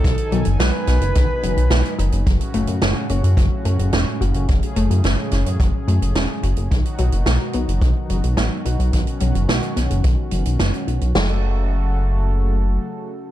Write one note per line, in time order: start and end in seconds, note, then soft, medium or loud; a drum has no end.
0.00 2.22 B2 medium
0.00 2.22 D#3 medium
0.00 6.67 F#3 medium
0.00 2.22 D#4 medium
0.00 0.49 A4 loud
0.04 0.16 B1 loud
0.04 0.23 D#3 medium
0.04 2.24 G#5 medium
0.04 kick loud
0.04 closed hi-hat medium
0.18 closed hi-hat soft
0.32 0.43 B1 medium
0.32 0.58 F#3 loud
0.32 closed hi-hat medium
0.45 0.57 F#1 medium
0.45 closed hi-hat medium
0.60 0.71 B1 loud
0.60 0.79 B3 medium
0.60 2.15 B4 loud
0.60 snare loud
0.60 closed hi-hat medium
0.87 0.99 B1 medium
0.87 1.14 B3 medium
0.87 snare soft
0.87 closed hi-hat medium
1.01 1.13 F#1 medium
1.01 closed hi-hat medium
1.15 1.27 B1 loud
1.15 1.34 D#3 loud
1.15 kick loud
1.15 closed hi-hat medium
1.43 1.55 F#1 medium
1.43 1.62 F#3 medium
1.43 closed hi-hat medium
1.57 1.69 B1 medium
1.57 closed hi-hat medium
1.71 1.82 B1 loud
1.71 1.90 B3 medium
1.71 snare loud
1.71 closed hi-hat medium
1.85 closed hi-hat soft
1.99 2.10 F#1 medium
1.99 2.25 D#4 medium
1.99 closed hi-hat medium
2.12 2.24 F#1 medium
2.12 closed hi-hat medium
2.26 2.38 F#1 loud
2.26 6.67 A2 medium
2.26 6.67 C#3 medium
2.26 2.45 F#3 medium
2.26 6.67 C#4 medium
2.26 4.46 F#4 medium
2.26 kick loud
2.26 closed hi-hat medium
2.41 closed hi-hat soft
2.54 2.66 F#1 medium
2.54 2.81 A3 loud
2.54 closed hi-hat medium
2.67 2.80 F#2 medium
2.67 closed hi-hat medium
2.82 2.94 F#1 loud
2.82 3.01 C#4 medium
2.82 snare loud
2.82 closed hi-hat medium
3.09 3.21 F#1 medium
3.09 3.36 C#4 medium
3.09 closed hi-hat medium
3.24 3.35 F#2 medium
3.24 closed hi-hat medium
3.37 3.49 F#1 loud
3.37 3.56 F#3 loud
3.37 kick loud
3.37 closed hi-hat medium
3.65 3.77 F#2 medium
3.65 3.84 A3 medium
3.65 closed hi-hat medium
3.79 3.91 F#1 medium
3.79 closed hi-hat medium
3.93 4.05 E1 loud
3.93 4.12 C#4 medium
3.93 snare loud
3.93 closed hi-hat medium
4.21 4.32 F#1 medium
4.21 4.47 F#4 medium
4.21 closed hi-hat medium
4.34 4.46 F#1 medium
4.34 closed hi-hat medium
4.48 4.60 F#1 loud
4.48 4.68 F#3 medium
4.48 6.69 G#4 medium
4.48 kick loud
4.48 closed hi-hat medium
4.63 closed hi-hat medium
4.76 4.88 F#1 medium
4.76 5.03 A3 loud
4.76 closed hi-hat medium
4.90 5.02 F#2 medium
4.90 closed hi-hat medium
5.04 5.16 F#1 loud
5.04 5.23 C#4 medium
5.04 snare loud
5.04 closed hi-hat medium
5.31 5.44 F#1 medium
5.31 5.58 C#4 medium
5.31 snare soft
5.31 closed hi-hat medium
5.46 5.57 F#2 medium
5.46 closed hi-hat medium
5.60 5.71 F#1 medium
5.60 5.79 F#3 loud
5.60 kick loud
5.60 closed hi-hat medium
5.88 5.99 F#2 medium
5.88 6.07 A3 medium
5.88 closed hi-hat medium
6.01 6.13 F#1 medium
6.01 closed hi-hat medium
6.15 6.27 E1 loud
6.15 6.34 C#4 medium
6.15 snare loud
6.15 closed hi-hat medium
6.43 6.55 F#1 medium
6.43 6.69 F#4 medium
6.43 closed hi-hat medium
6.56 6.69 F#1 medium
6.56 closed hi-hat medium
6.71 6.83 B1 loud
6.71 11.11 B2 medium
6.71 11.11 D#3 medium
6.71 6.90 D#3 medium
6.71 11.11 F#3 medium
6.71 8.91 D#4 medium
6.71 11.11 F#4 medium
6.71 kick loud
6.71 closed hi-hat medium
6.85 closed hi-hat soft
6.98 7.10 B1 medium
6.98 7.25 F#3 loud
6.98 closed hi-hat medium
7.12 7.24 F#1 medium
7.12 closed hi-hat medium
7.26 7.38 B1 loud
7.26 7.45 B3 medium
7.26 snare loud
7.26 closed hi-hat medium
7.53 7.66 B1 medium
7.53 7.81 B3 medium
7.53 closed hi-hat medium
7.68 7.80 F#1 medium
7.68 closed hi-hat medium
7.81 7.93 B1 medium
7.81 8.01 D#3 loud
7.81 kick loud
7.81 closed hi-hat medium
8.10 8.21 F#1 medium
8.10 8.29 F#3 medium
8.10 closed hi-hat medium
8.24 8.35 B1 medium
8.24 closed hi-hat medium
8.37 8.49 A1 loud
8.37 8.57 B3 medium
8.37 snare loud
8.37 closed hi-hat medium
8.65 8.77 B1 medium
8.65 8.92 D#4 medium
8.65 closed hi-hat medium
8.79 8.91 B1 medium
8.79 closed hi-hat medium
8.93 9.05 B1 loud
8.93 9.12 D#3 medium
8.93 11.13 C#4 medium
8.93 kick loud
8.93 closed hi-hat medium
9.07 closed hi-hat soft
9.20 9.32 B1 medium
9.20 9.47 F#3 medium
9.20 closed hi-hat medium
9.35 9.46 F#1 medium
9.35 closed hi-hat medium
9.49 9.60 B1 loud
9.49 9.68 B3 medium
9.49 snare loud
9.49 closed hi-hat medium
9.62 closed hi-hat soft
9.76 9.88 B1 medium
9.76 10.03 B3 medium
9.76 snare soft
9.76 closed hi-hat medium
9.90 10.02 F#1 medium
9.90 closed hi-hat medium
10.04 10.16 B1 medium
10.04 10.23 D#3 loud
10.04 kick loud
10.04 closed hi-hat medium
10.31 10.44 F#1 medium
10.31 10.51 F#3 medium
10.31 closed hi-hat medium
10.45 10.57 B1 medium
10.45 closed hi-hat medium
10.59 10.71 F#1 loud
10.59 10.79 B3 medium
10.59 snare loud
10.59 closed hi-hat medium
10.74 closed hi-hat soft
10.87 10.99 B1 medium
10.87 11.14 D#4 medium
10.87 closed hi-hat medium
11.01 11.13 B1 medium
11.01 closed hi-hat medium
11.15 12.78 F#1 medium
11.15 13.31 C#3 medium
11.15 11.41 F#3 medium
11.15 13.31 F#3 medium
11.15 13.31 A3 medium
11.15 13.31 F#4 medium
11.15 13.31 A4 medium
11.15 snare loud
11.15 crash medium